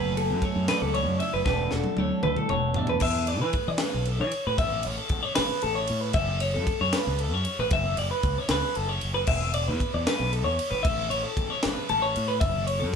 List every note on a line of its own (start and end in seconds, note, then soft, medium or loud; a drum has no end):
0.00 0.32 F#1 loud
0.00 1.46 F#3 medium
0.00 0.45 A3 medium
0.00 1.22 E4 medium
0.00 0.17 G#4 medium
0.00 0.16 B4 medium
0.00 0.71 B4 medium
0.17 1.44 G#4 medium
0.17 0.43 A4 medium
0.17 ride medium
0.31 0.42 F#2 medium
0.42 1.47 A3 medium
0.42 0.68 C#5 medium
0.42 kick medium
0.42 ride medium
0.56 0.67 F#2 medium
0.68 0.82 B4 medium
0.68 1.45 D5 medium
0.68 snare loud
0.68 ride loud
0.82 1.08 C#2 medium
0.82 0.94 A4 medium
0.94 1.44 C#3 medium
0.94 1.19 C#5 medium
0.94 ride medium
1.08 1.19 F#2 medium
1.20 1.48 E4 medium
1.20 1.33 E5 medium
1.20 ride medium
1.34 1.45 F#1 medium
1.34 1.44 B4 medium
1.45 1.70 E1 loud
1.45 3.00 E3 medium
1.45 1.98 A3 medium
1.45 2.78 D4 medium
1.45 1.73 F#4 medium
1.45 1.72 B4 loud
1.45 kick loud
1.45 snare medium
1.49 2.26 A4 medium
1.71 1.84 E1 medium
1.71 3.00 F#4 medium
1.71 1.98 A4 medium
1.71 snare medium
1.84 high tom medium
1.97 2.10 D2 loud
1.97 3.00 A3 medium
1.97 2.23 C#5 medium
1.97 high tom medium
2.23 2.36 D2 medium
2.23 2.37 B4 medium
2.23 mid tom medium
2.27 4.60 A4 medium
2.36 2.51 A4 medium
2.36 mid tom medium
2.49 2.74 E1 medium
2.49 3.00 B2 medium
2.49 2.76 C#5 medium
2.49 mid tom medium
2.74 3.00 E2 medium
2.74 2.89 E5 medium
2.74 floor tom medium
2.79 3.00 D4 medium
2.87 3.03 B4 medium
2.87 floor tom medium
3.00 3.42 E2 loud
3.00 3.28 E5 loud
3.00 kick loud
3.00 crash loud
3.27 3.41 D5 medium
3.27 ride medium
3.41 3.54 E3 medium
3.41 3.68 B4 medium
3.53 kick medium
3.53 ride medium
3.68 3.80 E3 medium
3.68 3.81 D5 medium
3.78 4.08 B4 medium
3.78 snare loud
3.78 ride loud
3.94 4.21 B1 medium
4.05 4.20 A4 medium
4.05 ride medium
4.20 4.32 E3 loud
4.20 4.47 C#5 medium
4.32 ride medium
4.47 4.57 A2 medium
4.47 4.58 B4 medium
4.58 4.82 A1 loud
4.58 4.85 E5 loud
4.58 kick loud
4.58 ride loud
4.83 4.98 A1 loud
4.83 4.97 C#5 medium
4.83 ride medium
4.97 5.23 A4 medium
5.09 5.22 G#1 loud
5.09 kick medium
5.09 ride medium
5.23 5.35 C#5 medium
5.35 5.49 G#1 loud
5.35 5.62 B4 medium
5.35 snare loud
5.35 ride loud
5.62 5.87 A1 medium
5.62 5.76 A4 medium
5.62 ride medium
5.75 6.01 C#5 medium
5.87 6.14 A2 loud
5.87 ride medium
6.01 6.14 B4 medium
6.13 6.57 F#1 loud
6.13 6.41 E5 loud
6.13 kick loud
6.13 ride loud
6.40 6.54 C#5 medium
6.40 ride medium
6.54 6.67 F#2 medium
6.54 6.80 A4 medium
6.67 kick medium
6.67 ride medium
6.81 6.93 F#2 loud
6.81 6.95 C#5 medium
6.93 7.20 B4 medium
6.93 snare loud
6.93 ride loud
7.07 7.33 C#2 medium
7.18 7.34 A4 medium
7.18 ride medium
7.33 7.45 F#2 medium
7.33 7.59 C#5 medium
7.45 ride medium
7.59 7.71 A1 medium
7.59 7.72 B4 medium
7.71 7.95 F#1 loud
7.71 7.98 E5 loud
7.71 kick loud
7.71 ride loud
7.97 8.10 F#1 medium
7.97 8.11 D5 medium
7.97 ride medium
8.11 8.38 B4 medium
8.23 8.36 C#2 medium
8.23 kick medium
8.23 ride medium
8.38 8.51 C#5 medium
8.49 8.62 C#2 loud
8.49 8.76 B4 medium
8.49 snare loud
8.49 ride loud
8.75 9.00 F#1 medium
8.75 8.89 A4 medium
8.75 ride medium
8.89 9.14 C#5 medium
9.01 9.26 F#1 medium
9.01 ride medium
9.14 9.27 B4 medium
9.27 9.70 E1 loud
9.27 9.54 E5 loud
9.27 kick loud
9.27 crash loud
9.54 9.68 D5 medium
9.54 ride medium
9.68 9.80 E2 medium
9.68 9.94 B4 medium
9.80 kick medium
9.80 ride medium
9.94 10.06 E2 loud
9.94 10.07 D5 medium
10.07 10.33 B4 medium
10.07 snare loud
10.07 ride loud
10.20 10.46 B1 medium
10.33 10.46 A4 medium
10.33 ride medium
10.44 10.58 E2 medium
10.44 10.71 C#5 medium
10.59 ride medium
10.71 10.84 G#1 loud
10.71 10.84 B4 medium
10.83 11.09 A1 loud
10.83 11.10 E5 loud
10.83 kick loud
10.83 ride loud
11.10 11.24 A1 medium
11.10 11.23 C#5 medium
11.10 ride medium
11.23 11.50 A4 medium
11.37 11.49 G#1 loud
11.37 kick medium
11.37 ride medium
11.50 11.63 C#5 medium
11.63 11.76 G#1 loud
11.63 11.89 B4 medium
11.63 snare loud
11.63 ride loud
11.89 12.14 A1 medium
11.89 12.03 A4 medium
11.89 ride medium
12.02 12.28 C#5 medium
12.16 12.40 A2 loud
12.16 ride medium
12.28 12.40 B4 medium
12.40 12.83 F#1 loud
12.40 12.66 E5 loud
12.40 kick loud
12.40 ride loud
12.67 12.80 C#5 medium
12.67 ride medium
12.80 12.93 F#2 medium
12.80 12.96 A4 medium